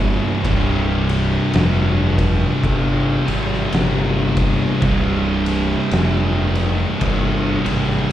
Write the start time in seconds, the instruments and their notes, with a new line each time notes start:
Already playing: fingered electric bass G1, distorted electric guitar C2 G2 C3
0.43 fingered electric bass C1, distorted electric guitar C2 G2 C3, kick, ride
1.09 ride
1.53 fingered electric bass F1, snare, ride
2.18 kick, ride
2.64 fingered electric bass G1, kick, ride
3.26 fingered electric bass G#1, distorted electric guitar G2 C3, ride
3.30 distorted electric guitar C2
3.53 snare
3.72 fingered electric bass G1, distorted electric guitar C2 G2 C3, snare, ride
4.37 kick, ride
4.81 fingered electric bass C1, distorted electric guitar C2 G2 C3, kick, ride
5.46 ride
5.91 fingered electric bass F1, snare, ride
6.55 ride
7.01 fingered electric bass G1, kick, ride
7.65 fingered electric bass G#1, distorted electric guitar C2 G2 C3, ride
7.90 snare